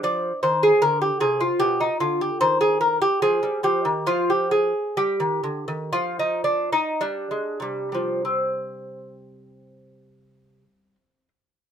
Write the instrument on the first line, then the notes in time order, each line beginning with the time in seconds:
lute
0.03 F3 D5
0.43 D#3 C5
0.63 G#4
0.82 D3 A#4
1.02 G4
1.20 C3 G#4
1.41 F4
1.59 B2 G4
1.80 D#4
2.00 D3 F4
2.21 G4
2.41 D#3 C5
2.61 G#4
2.81 A#4
3.02 G4
3.22 F3 G#4
3.43 G3
3.63 F3 G4
3.85 D#3
4.07 F3 F4
4.30 G4
4.51 G#4
4.97 G3 G4
5.20 D#3
5.44 D3
5.68 D#3
5.93 F3 F4
6.19 D#4
6.44 D4
6.73 D#4
7.01 G3 D4
7.31 G#3
7.60 C3 G3
7.92 F3 G3
8.25 C4